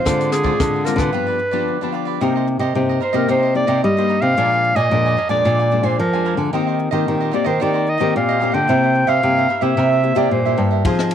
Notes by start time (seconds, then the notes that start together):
Already playing: C5
0.05 D3 G#3 C4 F4 G#4 C5 D5, kick, cross-stick, closed hi-hat
0.19 G#4 C5 D5, closed hi-hat
0.32 G#4, muted cavaquinho stroke, cross-stick, closed hi-hat
0.43 G#3 C4 F4 G#4 C5 D5, kick
0.60 D3, kick, cross-stick, closed hi-hat
0.73 G#4 C5 D5
0.85 G#3 C4 F4 G#4 A#4 C5 D5, cross-stick, closed hi-hat
0.96 D3 G#4 B4 C5 D5, kick, cross-stick, closed hi-hat
1.12 G2 F3 B3 D4 F4 G4 B4 D5
1.27 G4 B4 D5
1.39 muted cavaquinho stroke
1.51 F3 B3 D4 G4 B4 D5
1.68 D3
1.81 F3 B3 D4 G4 B4 D5
1.92 F4 G4 B4 D5
2.05 G4 B4 D5
2.21 C3 A#3 D#4 G4 A#4 C5 D#5
2.36 A#4 C5 D#5
2.47 muted cavaquinho stroke
2.59 C3 A#4 C5 D#5
2.75 G2 C3 A#3 D#4 G4
2.89 A#4 C5 D#5
3.00 D#4 A#4 C5 D#5
3.13 C3 A#3 D#4 G4 A#4 C5 D#5
3.28 C3 D#4 A#4 C5 D#5
3.43 A#4 C5 D#5
3.54 A#3 D#4 G4 D5, muted cavaquinho stroke
3.67 C3 A#4 C5 D#5
3.83 G2 G3 D#5
3.97 A#3 D#4 G4 A#4 C5 D#5
4.08 D#4 A#4 C5 D#5
4.21 C3 A#4 C5 D#5 F5
4.37 A#2 F3 G#3 D4 A#4 D5 G#5
4.51 A#4 G#5
4.64 muted cavaquinho stroke
4.76 A#2 A#4 D5 D#5 G#5
4.91 F2 A#2 F3 G#3 D4
5.06 A#4 D5 G#5
5.17 D4 A#4 D5 G#5
5.29 A#2 F3 G#3 D4 A#4 D5 G#5
5.45 A#2 D4 A#4 D5 G#5
5.59 A#4 D5 G#5
5.71 F3 G#3 D4, muted cavaquinho stroke
5.83 A#2 A#4 C5 D5 G#5
5.99 F2 F3 A#4
6.13 F3 G#3 D4 A#4 D5 G#5
6.25 D4 A#4 D5 G#5
6.37 D3 A#4 D5 G#5
6.53 D#3 A#3 C4 D#4 G4 C5 D#5
6.67 G4 C5 D#5
6.79 muted cavaquinho stroke
6.91 D#3 A#3 C4 G4 C5 D#5
7.08 A#2 D#3
7.20 G4 C5 D#5
7.31 A#3 C4 D#4 G4 C5 D5 D#5
7.44 D#3 G4 C5 D#5
7.60 D#3 A#3 C4 D#4 G4 C5 D5 D#5
7.74 G4 C5 D#5
7.87 D#5, muted cavaquinho stroke
7.98 D#3 A#3 C4 G4 C5 D#5
8.16 A#2 F5
8.29 G4 C5 D#5
8.39 A#3 C4 D#4 G4 C5 D#5
8.44 G4
8.52 D3 G4 C5 D#5 G5
8.68 C3 A#3 E4 G4 A#4 C5 E5
8.83 A#4 C5 E5
8.95 muted cavaquinho stroke
9.07 C3 A#4 C5 E5 F5
9.23 G2 C3 A#3 E4 G4
9.37 A#4 C5 E5
9.49 E4 A#4 C5 E5
9.57 F5
9.61 C3 A#3 E4 G4 A#4 C5 E5
9.77 C3 E4 A#4 C5 E5
9.92 A#4 C5 E5
10.03 A#3 E4 G4, muted cavaquinho stroke
10.15 C3 A#3 E4 G4 A#4 C5 D5 E5
10.31 G2 A#2 C5
10.45 A#3 E4 G4 A#4 C5 E5
10.57 G2 E4 A#4 C5 E5
10.71 A#4 C5 E5
10.85 F3 C4 D#4 F4 G#4 C5 D#5, kick, ride
10.99 G#4 C5 D#5, cross-stick
11.11 ride